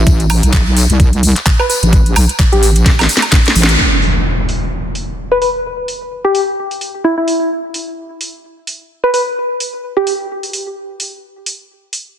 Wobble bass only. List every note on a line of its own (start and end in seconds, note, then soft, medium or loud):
0.07 0.41 A1 loud
0.43 0.88 B1 loud
0.90 1.34 C2 loud
1.83 2.14 A1 loud
2.16 2.27 B1 loud
2.53 2.84 A1 loud
2.86 3.07 A1 loud
3.56 3.77 A1 loud